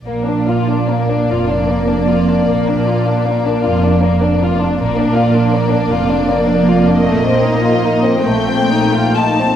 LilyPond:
<<
  \new Staff \with { instrumentName = "Violin section" } { \time 6/8 \key bes \major \tempo 4. = 51 d''2.~ | d''2. | d''2. | ees''4. g''4 a''8 | }
  \new Staff \with { instrumentName = "Violin section" } { \time 6/8 \key bes \major bes16 d'16 f'16 d'16 bes16 d'16 f'16 d'16 bes16 d'16 f'16 d'16 | bes16 d'16 f'16 d'16 bes16 d'16 f'16 d'16 bes16 d'16 f'16 d'16 | bes16 d'16 f'16 d'16 bes16 d'16 f'16 d'16 bes16 d'16 f'16 d'16 | a16 c'16 ees'16 f'16 ees'16 c'16 a16 c'16 ees'16 f'16 ees'16 c'16 | }
  \new Staff \with { instrumentName = "Viola section" } { \time 6/8 \key bes \major bes2.~ | bes2. | bes2.~ | bes4. a4~ a16 r16 | }
  \new Staff \with { instrumentName = "Cello section" } { \clef bass \time 6/8 \key bes \major bes,4. f,4. | bes,4. f,4. | bes,4. f,4. | bes,4. bes,4. | }
  \new Staff \with { instrumentName = "Double bass section" } { \clef bass \time 6/8 \key bes \major bes,,4. f,,4. | bes,,4. f,,4. | bes,,4. f,,4. | bes,,4. bes,,4. | }
>>